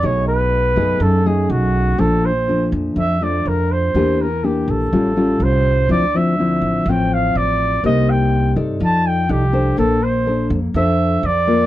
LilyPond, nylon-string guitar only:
\new Staff \with { instrumentName = "Nylon-string guitar" } { \time 4/4 \key bes \lydian \tempo 4 = 123 << { <a dis' gis'>4. <a dis' gis'>4 <a dis' gis'>4. | <f a d'>8 r8 <f a d'>4. <f a d'>4. | <bes d' g'>8 r8 <bes d' g'>4 <g cis' eis'>8 <g cis' eis'>4. | <f c' e'>8 <f c' e'>8 <f c' e'>4 <f c' e'>2 |
<bes ees' g'>4. <ees' a' d''>4. <ees' a' d''>8 <d' a' c''>8~ | <d' a' c''>8 r8 <d' a' c''>8 r8 <d' a' c''>4 r8 <bes f'>8 | } \\ { b,2 fis,2 | bes,2 f,2 | e2 a,2 | d2 a,2 |
c2 f2 | bes2 f2 | } >> }